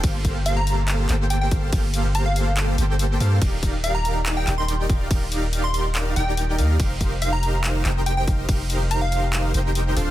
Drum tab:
RD |x-------|x-------|x-------|x-------|
HH |xxxxxxxx|xxxxxxxx|xxxxxxxx|xxxxxxxx|
CP |----xx--|----x---|----xx--|----x---|
BD |oo-----o|o-------|oo-----o|o-------|

RD |x-------|x-------|
HH |xxxxxxxx|xxxxxxxx|
CP |----xx--|----x---|
BD |oo-----o|o-------|